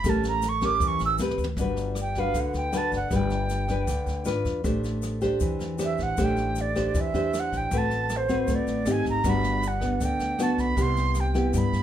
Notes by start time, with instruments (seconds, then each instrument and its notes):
Already playing: flute B5
0.04 upright bass A1, nylon-string guitar A3 C#4 G4 A#4, kick, cross-stick, snare, shaker
0.09 flute A5
0.24 snare, shaker
0.28 flute A#5
0.42 snare, shaker
0.49 flute C#6
0.61 nylon-string guitar C#4 G4 A#4, kick, cross-stick, snare, shaker
0.66 flute D6
0.80 upright bass E2, nylon-string guitar E3, kick, snare, shaker
0.88 flute C#6
0.99 upright bass A1, snare, shaker
1.05 flute E6
1.18 upright bass D2, nylon-string guitar C4 G4 B4, snare, shaker
1.31 mid tom
1.38 upright bass D2, shaker
1.44 floor tom
1.56 upright bass G1, nylon-string guitar G3 D4 F#4, kick, snare, shaker
1.60 nylon-string guitar B4
1.76 snare, shaker
1.95 cross-stick, snare, shaker
2.01 flute G5
2.15 nylon-string guitar D4 F#4 B4, kick, snare, shaker
2.20 flute F5
2.34 upright bass D2, nylon-string guitar D3, kick, snare, shaker
2.40 flute F#5
2.54 upright bass D2, flute G5, snare, shaker
2.72 nylon-string guitar D4 F#4 B4, cross-stick, snare, shaker
2.77 flute A5
2.92 upright bass G1, kick, snare, shaker
2.96 flute F#5
3.11 upright bass G1, nylon-string guitar G3 D4 B4, kick, cross-stick, snare, shaker
3.16 flute G5
3.30 snare, shaker
3.49 snare, shaker
3.68 nylon-string guitar D4 B4, kick, cross-stick, snare, shaker
3.87 upright bass D2, nylon-string guitar D3, kick, snare, shaker
4.06 upright bass D2, snare, shaker
4.25 upright bass G#1, nylon-string guitar D4 F4 B4, cross-stick, snare, shaker
4.45 upright bass E2, kick, snare, shaker
4.64 upright bass A1, nylon-string guitar A3 D4 G4 C5, kick, snare, shaker
4.84 snare, shaker
5.02 cross-stick, snare, shaker
5.21 nylon-string guitar D4 G4 C5, kick, snare, shaker
5.40 upright bass E2, nylon-string guitar E3, kick, snare, shaker
5.59 upright bass E2, snare, shaker
5.78 nylon-string guitar D4 G4 C5, cross-stick, snare, shaker
5.85 flute E5
5.98 upright bass A1, kick, snare, shaker
6.03 flute F#5
6.17 upright bass A1, nylon-string guitar A3 D4 G4 C5, kick, cross-stick, snare, shaker
6.24 flute G5
6.37 snare, shaker
6.55 snare, shaker
6.61 flute D5
6.75 nylon-string guitar D4 G4 C5, kick, cross-stick, snare, shaker
6.94 upright bass E2, nylon-string guitar E3, kick, snare, shaker
7.01 flute E5
7.14 upright bass E2, nylon-string guitar D4 G4 C5, snare, shaker
7.34 cross-stick, snare, shaker
7.40 flute F#5
7.52 upright bass A1, kick, snare, shaker
7.57 flute G5
7.71 upright bass A1, nylon-string guitar A3 C4 F#4 B4, kick, snare, shaker
7.78 flute A5
7.90 snare, shaker
8.10 cross-stick, snare, shaker
8.17 flute C5
8.29 nylon-string guitar C4 F#4 B4, kick, snare, shaker
8.47 upright bass A1, nylon-string guitar A3, kick, snare, shaker
8.55 flute D5
8.67 upright bass A1, snare, shaker
8.85 upright bass G#1, nylon-string guitar C4 D#4 G4, cross-stick, snare, shaker
8.91 flute G#5
9.05 upright bass G#1, kick, snare, shaker
9.10 flute A#5
9.24 upright bass G1, nylon-string guitar G3 B3 D4 F#4, kick, cross-stick, snare, shaker
9.30 flute B5
9.43 snare, shaker
9.62 snare, shaker
9.68 flute F#5
9.81 nylon-string guitar B3 D4, kick, cross-stick, snare, shaker
10.00 upright bass D2, nylon-string guitar D3, kick, snare, shaker
10.05 flute G5
10.20 upright bass D2, snare, shaker
10.38 nylon-string guitar B3 D4 F#4, cross-stick, snare, shaker
10.43 flute A5
10.58 upright bass B1, flute B5, kick, snare, shaker
10.77 upright bass C2, nylon-string guitar C3 B3 E4 G4, kick, snare, shaker
10.82 flute C6
10.96 snare, shaker
11.15 cross-stick, snare, shaker
11.20 flute G5
11.34 nylon-string guitar B3 E4 G4, kick, snare, shaker
11.53 nylon-string guitar G2, upright bass G2, kick, snare, shaker
11.58 flute B5
11.73 upright bass G2, snare, shaker